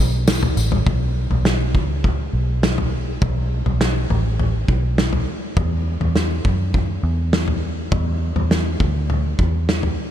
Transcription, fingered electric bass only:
Already playing: B1
0.57 A1
0.86 B1
1.30 B1
1.75 C#2
2.33 B1
3.22 B1
3.66 B1
4.10 A1
4.68 B1
5.57 E2
6.00 E2
6.45 F#2
7.03 E2
7.92 E2
8.36 E2
8.80 D2
9.39 E2

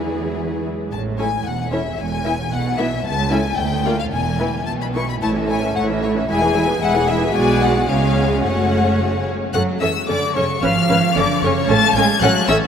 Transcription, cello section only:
Already playing: E3
0.92 A2
1.46 E2
1.98 E2
2.52 B2
3.05 C#2
3.58 D2
4.12 E2
4.67 B2
5.22 A2
5.76 A2
6.29 E2
6.82 E2
7.35 B2
7.89 C#3
8.43 F#2
9.54 F#3
9.81 E3
10.08 D3
10.35 C#3
10.62 F3
11.15 D3
11.42 C#3
11.69 A3
11.96 G#3
12.21 F#3
12.47 E3

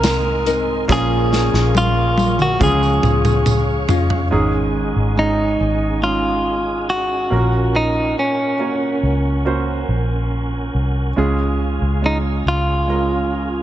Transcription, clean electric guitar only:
Already playing: A#4
0.92 G#4
1.78 F4
2.42 F#4
2.63 G#4
5.19 D#4
6.04 F4
6.90 F#4
7.76 D#4
8.19 C#4
12.06 D#4
12.48 F4

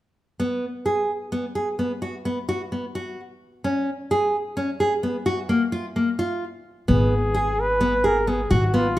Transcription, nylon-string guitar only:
0.40 B3
0.86 G#4
1.32 B3
1.55 G#4
1.79 B3
2.02 F#4
2.25 B3
2.49 F#4
2.72 B3
2.95 F#4
3.64 C#4
4.11 G#4
4.57 C#4
4.80 G#4
5.03 B3
5.26 F#4
5.49 A#3
5.72 F4
5.96 A#3
6.19 F4
6.88 B3
7.35 G#4
7.81 B3
8.04 G#4
8.27 B3
8.51 F#4
8.74 B3

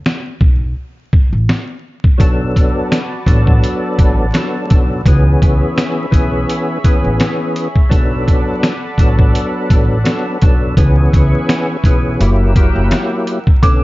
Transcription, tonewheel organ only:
2.17 F#3 B3 D4 A4
3.26 F#3 B3 D4 A4
4.33 F#3 B3 D4 A4
4.67 F#3 B3 D4 A4
5.07 E3 B3 C#4 G#4
6.11 E3 B3 C#4 G#4
6.84 E3 B3 C#4 G#4
7.89 F#3 B3 D4 A4
9.00 F#3 B3 D4 A4
10.04 F#3 B3 D4 A4
10.42 F#3 B3 D4 A4
10.77 E3 B3 C#4 G#4
11.85 E3 B3 C#4 G#4
12.20 F#3 A#3 E4 G4
12.56 F#3 A#3 E4 G4
13.62 D3 B3 C#4 A4

